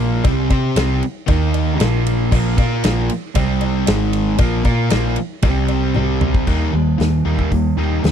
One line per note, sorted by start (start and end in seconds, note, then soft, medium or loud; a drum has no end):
0.00 0.20 A#1 medium
0.00 0.23 A#2 medium
0.00 0.24 F3 medium
0.00 0.23 A#3 medium
0.24 0.49 C2 medium
0.24 0.50 C3 loud
0.24 0.50 G3 loud
0.24 0.49 C4 loud
0.24 kick loud
0.24 ride medium
0.24 cowbell loud
0.50 0.75 C3 loud
0.50 0.76 C4 medium
0.50 0.76 G4 loud
0.50 0.76 C5 loud
0.50 kick medium
0.50 ride medium
0.50 cowbell medium
0.76 1.00 C2 medium
0.76 1.02 C3 medium
0.76 1.02 G3 medium
0.76 1.02 C4 medium
0.76 snare loud
0.76 ride medium
0.76 cowbell medium
1.03 ride medium
1.27 1.76 D#2 medium
1.27 1.79 D#3 loud
1.27 1.79 A#3 medium
1.27 1.80 D#4 loud
1.27 kick loud
1.27 ride medium
1.27 cowbell loud
1.54 ride medium
1.54 cowbell medium
1.79 2.29 A#1 medium
1.79 2.30 A#2 medium
1.79 2.31 F3 medium
1.79 2.31 A#3 medium
1.79 snare loud
1.79 ride medium
1.79 cowbell medium
2.06 ride medium
2.31 2.56 A#1 loud
2.31 2.57 A#2 medium
2.31 2.57 F3 medium
2.31 2.57 A#3 loud
2.31 kick loud
2.31 cowbell loud
2.31 crash medium
2.58 2.82 A#2 medium
2.58 2.83 A#3 loud
2.58 2.83 F4 medium
2.58 2.84 A#4 loud
2.58 kick loud
2.58 ride medium
2.58 cowbell medium
2.84 3.08 A#1 medium
2.84 3.10 A#2 medium
2.84 3.10 F3 loud
2.84 3.10 A#3 medium
2.84 snare loud
2.84 ride loud
2.84 cowbell medium
3.10 ride medium
3.35 3.84 C2 medium
3.35 3.87 C3 loud
3.35 3.87 G3 loud
3.35 3.88 C4 loud
3.35 kick loud
3.35 ride loud
3.35 cowbell medium
3.61 ride medium
3.61 cowbell medium
3.87 4.36 G#1 loud
3.87 4.39 G#2 medium
3.87 4.39 D#3 medium
3.87 4.39 G#3 medium
3.87 snare loud
3.87 ride loud
3.87 cowbell medium
4.13 ride medium
4.38 4.64 A#1 medium
4.38 4.65 A#2 loud
4.38 4.64 F3 loud
4.38 4.63 A#3 loud
4.38 kick medium
4.38 ride medium
4.38 cowbell loud
4.65 4.90 A#2 medium
4.65 4.90 A#3 medium
4.65 4.91 F4 medium
4.65 4.91 A#4 medium
4.65 kick medium
4.65 ride medium
4.65 cowbell medium
4.90 5.16 A#1 medium
4.90 5.16 A#2 medium
4.90 5.17 F3 medium
4.90 5.17 A#3 medium
4.90 snare loud
4.90 ride loud
4.90 cowbell medium
5.16 ride medium
5.42 5.92 C2 medium
5.42 5.93 C3 medium
5.42 5.95 G3 medium
5.42 5.95 C4 loud
5.42 kick loud
5.42 ride medium
5.42 cowbell medium
5.68 ride medium
5.68 cowbell medium
5.94 6.44 C2 medium
5.94 6.46 C3 medium
5.94 6.47 G3 medium
5.94 6.47 C4 medium
5.94 high tom medium
5.94 cowbell medium
6.21 mid tom medium
6.34 kick medium
6.47 6.68 D#2 medium
6.47 6.72 D#3 medium
6.47 6.72 G3 medium
6.47 6.72 A#3 medium
6.47 6.73 D#4 medium
6.47 kick medium
6.47 crash medium
6.73 6.94 D#2 medium
6.73 6.97 D#3 medium
6.73 6.98 G3 medium
6.73 6.97 A#3 medium
6.98 7.20 D#2 medium
6.98 7.22 D#3 medium
6.98 7.23 G3 medium
6.98 7.23 A#3 medium
6.98 snare medium
6.98 open hi-hat soft
7.25 7.46 D#2 medium
7.25 7.50 D#3 medium
7.25 7.50 G3 medium
7.25 7.50 A#3 medium
7.25 7.50 D#4 medium
7.39 kick medium
7.51 7.72 D#2 medium
7.51 7.75 D#3 medium
7.51 7.75 G3 medium
7.51 7.75 A#3 medium
7.51 kick medium
7.51 open hi-hat soft
7.77 7.98 D#2 medium
7.77 8.02 D#3 medium
7.77 8.02 G3 medium
7.77 8.03 A#3 medium
7.77 8.03 D#4 medium
8.03 8.12 D#2 medium
8.03 8.12 D#3 medium
8.03 8.12 G3 medium
8.03 8.12 A#3 medium
8.03 snare medium
8.03 open hi-hat soft